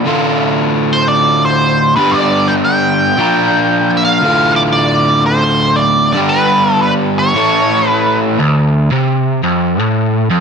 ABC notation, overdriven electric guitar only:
X:1
M:4/4
L:1/8
Q:"Swing" 1/4=115
K:Dm
V:1 name="Overdriven electric guitar" clef=bass
[D,,A,,D,A,F]6- [D,,A,,D,A,F] [G,,D,G,=B,DG]- | [G,,D,G,=B,DG]4 [_B,,F,_B,DFB]4 | [D,,A,,D,A,F]6- [D,,A,,D,A,F] [G,,D,G,=B,DG]- | [G,,D,G,=B,DG]4 [A,,E,A,^CEA]4 |
D,,2 C,2 F,, A,,2 F,, |]